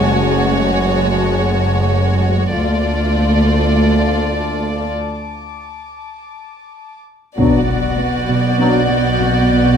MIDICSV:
0, 0, Header, 1, 11, 480
1, 0, Start_track
1, 0, Tempo, 606061
1, 87, Time_signature, 4, 2, 24, 8
1, 7739, End_track
2, 0, Start_track
2, 0, Title_t, "Violin section"
2, 0, Program_c, 0, 48
2, 0, Note_on_c, 0, 80, 35
2, 0, Note_on_c, 0, 81, 37
2, 1725, Note_off_c, 0, 81, 0
2, 1730, Note_off_c, 0, 80, 0
2, 1990, Note_on_c, 0, 81, 34
2, 2469, Note_on_c, 0, 86, 34
2, 5566, Note_off_c, 0, 86, 0
2, 5567, Note_off_c, 0, 81, 0
2, 5828, Note_on_c, 0, 90, 28
2, 6330, Note_on_c, 0, 91, 35
2, 7739, Note_off_c, 0, 90, 0
2, 7739, Note_off_c, 0, 91, 0
2, 7739, End_track
3, 0, Start_track
3, 0, Title_t, "Violin section"
3, 0, Program_c, 1, 48
3, 0, Note_on_c, 1, 73, 45
3, 1976, Note_off_c, 1, 73, 0
3, 2005, Note_on_c, 1, 74, 38
3, 3894, Note_off_c, 1, 74, 0
3, 5837, Note_on_c, 1, 74, 41
3, 7739, Note_off_c, 1, 74, 0
3, 7739, End_track
4, 0, Start_track
4, 0, Title_t, "Violin section"
4, 0, Program_c, 2, 48
4, 0, Note_on_c, 2, 66, 40
4, 1980, Note_off_c, 2, 66, 0
4, 2006, Note_on_c, 2, 65, 39
4, 3895, Note_off_c, 2, 65, 0
4, 5857, Note_on_c, 2, 66, 37
4, 7739, Note_off_c, 2, 66, 0
4, 7739, End_track
5, 0, Start_track
5, 0, Title_t, "French horn section"
5, 0, Program_c, 3, 60
5, 5841, Note_on_c, 3, 62, 40
5, 5845, Note_on_c, 3, 59, 42
5, 6010, Note_off_c, 3, 62, 0
5, 6013, Note_off_c, 3, 59, 0
5, 6801, Note_on_c, 3, 59, 35
5, 6807, Note_on_c, 3, 62, 37
5, 6971, Note_off_c, 3, 59, 0
5, 6975, Note_off_c, 3, 62, 0
5, 7739, End_track
6, 0, Start_track
6, 0, Title_t, "Viola section"
6, 0, Program_c, 4, 48
6, 0, Note_on_c, 4, 56, 42
6, 1978, Note_off_c, 4, 56, 0
6, 1998, Note_on_c, 4, 57, 40
6, 3891, Note_off_c, 4, 57, 0
6, 5851, Note_on_c, 4, 59, 40
6, 7739, Note_off_c, 4, 59, 0
6, 7739, End_track
7, 0, Start_track
7, 0, Title_t, "Trombone section"
7, 0, Program_c, 5, 61
7, 5848, Note_on_c, 5, 54, 37
7, 5855, Note_on_c, 5, 47, 39
7, 6015, Note_off_c, 5, 54, 0
7, 6019, Note_off_c, 5, 47, 0
7, 6807, Note_on_c, 5, 47, 37
7, 6810, Note_on_c, 5, 54, 42
7, 6974, Note_off_c, 5, 47, 0
7, 6976, Note_off_c, 5, 54, 0
7, 7739, End_track
8, 0, Start_track
8, 0, Title_t, "Cello section"
8, 0, Program_c, 6, 48
8, 5842, Note_on_c, 6, 47, 49
8, 5988, Note_off_c, 6, 47, 0
8, 6080, Note_on_c, 6, 47, 32
8, 6226, Note_off_c, 6, 47, 0
8, 6319, Note_on_c, 6, 59, 37
8, 6465, Note_off_c, 6, 59, 0
8, 6559, Note_on_c, 6, 47, 49
8, 6705, Note_off_c, 6, 47, 0
8, 6799, Note_on_c, 6, 59, 35
8, 6945, Note_off_c, 6, 59, 0
8, 7041, Note_on_c, 6, 47, 36
8, 7187, Note_off_c, 6, 47, 0
8, 7277, Note_on_c, 6, 47, 49
8, 7424, Note_off_c, 6, 47, 0
8, 7517, Note_on_c, 6, 47, 37
8, 7664, Note_off_c, 6, 47, 0
8, 7739, End_track
9, 0, Start_track
9, 0, Title_t, "Cello section"
9, 0, Program_c, 7, 48
9, 0, Note_on_c, 7, 42, 51
9, 1975, Note_off_c, 7, 42, 0
9, 2001, Note_on_c, 7, 38, 42
9, 3924, Note_off_c, 7, 38, 0
9, 5848, Note_on_c, 7, 47, 46
9, 7739, Note_off_c, 7, 47, 0
9, 7739, End_track
10, 0, Start_track
10, 0, Title_t, "Double bass section"
10, 0, Program_c, 8, 48
10, 0, Note_on_c, 8, 30, 49
10, 1977, Note_off_c, 8, 30, 0
10, 2000, Note_on_c, 8, 38, 46
10, 3923, Note_off_c, 8, 38, 0
10, 5845, Note_on_c, 8, 35, 42
10, 7739, Note_off_c, 8, 35, 0
10, 7739, End_track
11, 0, Start_track
11, 0, Title_t, "Impact"
11, 0, Program_c, 10, 103
11, 5844, Note_on_c, 10, 60, 42
11, 7739, Note_off_c, 10, 60, 0
11, 7739, End_track
0, 0, End_of_file